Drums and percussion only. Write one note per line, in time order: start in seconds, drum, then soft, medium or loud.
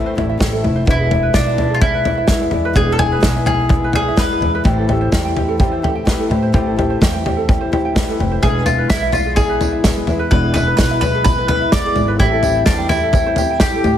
0.18 floor tom medium
0.41 kick loud
0.41 snare loud
0.41 floor tom medium
0.64 floor tom medium
0.87 kick medium
0.87 floor tom medium
1.11 floor tom medium
1.34 kick medium
1.34 snare medium
1.34 floor tom medium
1.58 floor tom medium
1.82 kick loud
1.82 floor tom medium
2.05 floor tom medium
2.28 kick medium
2.28 snare medium
2.28 floor tom medium
2.51 floor tom medium
2.76 kick medium
2.76 floor tom medium
2.99 floor tom medium
3.23 kick loud
3.23 snare loud
3.23 floor tom medium
3.46 floor tom medium
3.69 kick loud
3.69 floor tom medium
3.93 floor tom medium
4.17 kick loud
4.17 snare medium
4.17 floor tom medium
4.42 floor tom medium
4.65 kick medium
4.65 floor tom medium
4.89 floor tom medium
5.12 kick medium
5.12 snare loud
5.12 floor tom medium
5.37 floor tom medium
5.60 kick loud
5.60 floor tom medium
5.84 floor tom medium
6.07 kick medium
6.07 snare medium
6.07 floor tom medium
6.31 floor tom medium
6.54 kick medium
6.54 floor tom medium
6.79 floor tom medium
7.02 kick medium
7.02 snare medium
7.02 floor tom medium
7.26 floor tom medium
7.49 kick loud
7.49 floor tom medium
7.73 floor tom medium
7.96 kick loud
7.96 snare loud
7.96 floor tom medium
8.20 floor tom medium
8.43 kick medium
8.43 floor tom medium
8.43 tambourine soft
8.66 floor tom medium
8.66 tambourine medium
8.90 kick loud
8.90 snare medium
8.90 floor tom medium
8.90 tambourine medium
9.12 floor tom medium
9.12 tambourine medium
9.36 kick loud
9.36 floor tom medium
9.36 tambourine medium
9.61 floor tom medium
9.61 tambourine medium
9.84 kick medium
9.84 snare loud
9.84 floor tom medium
9.84 tambourine loud
10.07 floor tom medium
10.07 tambourine soft
10.32 kick medium
10.32 floor tom medium
10.32 tambourine soft
10.55 floor tom medium
10.55 tambourine medium
10.78 kick loud
10.78 snare loud
10.78 floor tom medium
10.78 tambourine medium
11.02 floor tom medium
11.02 tambourine medium
11.25 kick loud
11.25 floor tom medium
11.25 tambourine medium
11.49 floor tom medium
11.72 kick medium
11.72 snare medium
11.72 floor tom medium
11.72 tambourine medium
11.96 floor tom medium
11.96 tambourine soft
12.19 kick medium
12.19 floor tom medium
12.19 tambourine soft
12.43 floor tom medium
12.43 tambourine medium
12.66 kick loud
12.66 snare loud
12.66 floor tom medium
12.66 tambourine medium
12.89 floor tom medium
12.89 tambourine medium
13.13 kick medium
13.13 floor tom medium
13.13 tambourine medium
13.36 floor tom medium
13.36 tambourine medium
13.60 kick loud
13.60 snare loud
13.60 floor tom medium
13.60 tambourine loud
13.84 floor tom medium
13.84 tambourine soft